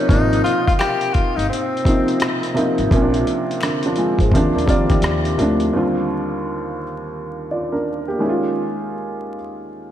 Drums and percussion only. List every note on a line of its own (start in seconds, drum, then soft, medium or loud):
0.09 kick loud
0.09 closed hi-hat medium
0.33 closed hi-hat soft
0.46 closed hi-hat medium
0.67 kick medium
0.67 closed hi-hat soft
0.79 finger snap medium
0.79 cross-stick loud
0.79 closed hi-hat medium
1.01 closed hi-hat soft
1.14 kick medium
1.14 closed hi-hat medium
1.39 closed hi-hat soft
1.53 closed hi-hat medium
1.77 closed hi-hat soft
1.85 kick medium
1.85 closed hi-hat medium
2.08 closed hi-hat soft
2.20 finger snap medium
2.20 cross-stick loud
2.20 closed hi-hat medium
2.43 closed hi-hat soft
2.57 closed hi-hat medium
2.78 closed hi-hat soft
2.91 kick loud
2.91 closed hi-hat medium
3.14 closed hi-hat soft
3.27 closed hi-hat medium
3.51 closed hi-hat soft
3.61 finger snap medium
3.61 cross-stick loud
3.61 closed hi-hat medium
3.83 closed hi-hat medium
3.96 closed hi-hat medium
4.19 kick medium
4.19 closed hi-hat soft
4.32 kick medium
4.32 closed hi-hat medium
4.58 closed hi-hat soft
4.68 kick medium
4.68 closed hi-hat medium
4.90 kick medium
4.90 cross-stick soft
4.90 closed hi-hat soft
5.02 finger snap medium
5.02 cross-stick loud
5.02 closed hi-hat medium
5.25 closed hi-hat soft
5.39 closed hi-hat medium
5.60 closed hi-hat soft